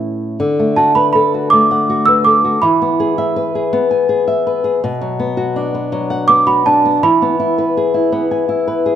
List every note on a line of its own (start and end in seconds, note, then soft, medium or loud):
0.00 0.36 A2 medium
0.00 0.36 C#4 soft
0.00 0.37 E4 medium
0.40 2.57 D3 medium
0.59 1.34 A3 soft
0.76 0.95 F#4 medium
0.76 0.96 A5 medium
0.95 1.70 B4 medium
0.95 1.04 B5 medium
1.13 2.08 A4 medium
1.13 1.30 B5 medium
1.34 1.88 F#4 soft
1.50 2.59 A3 medium
1.50 2.08 D6 medium
1.71 2.59 F#5 soft
1.90 2.43 F#4 soft
2.06 2.26 B4 soft
2.06 2.14 E6 medium
2.25 2.61 A4 soft
2.25 2.62 D6 medium
2.44 2.62 F#4 soft
2.62 4.77 E3 medium
2.62 4.03 B5 medium
2.82 3.36 B3 soft
3.00 3.54 G#4 medium
3.18 3.90 E5 medium
3.36 4.46 B4 medium
3.55 4.08 G#4 soft
3.73 4.78 B3 medium
3.91 4.27 G#5 soft
4.09 4.63 G#4 medium
4.28 4.80 E5 medium
4.47 4.81 B4 soft
4.64 4.81 G#4 medium
4.84 6.99 B2 medium
5.01 5.91 F#3 soft
5.19 5.73 B3 medium
5.37 6.45 F#4 soft
5.56 6.65 D4 medium
5.74 6.28 B3 soft
5.92 6.99 F#3 medium
6.10 6.99 F#5 soft
6.28 6.84 B3 medium
6.28 6.47 D6 medium
6.47 7.00 F#4 medium
6.47 6.64 B5 medium
6.66 7.02 D4 soft
6.66 7.03 A5 medium
6.85 7.02 B3 soft
7.03 8.95 E3 medium
7.03 8.46 B5 medium
7.22 8.11 B3 soft
7.40 7.93 E4 medium
7.58 8.66 B4 soft
7.77 8.85 G#4 medium
7.94 8.47 E4 soft
8.12 8.95 B3 medium
8.31 8.95 G#5 soft
8.49 8.95 E4 medium
8.68 8.95 B4 soft
8.86 8.95 G#4 soft